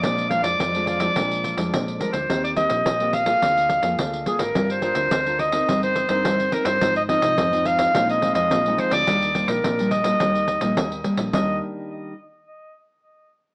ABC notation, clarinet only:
X:1
M:4/4
L:1/16
Q:1/4=106
K:Eb
V:1 name="Clarinet"
d2 f d3 d6 z2 B c- | c d e4 f6 z2 A B- | B c c4 e3 c2 c3 B c- | c e e4 f3 e2 e3 c d- |
d3 B3 e8 z2 | e2 z12 z2 |]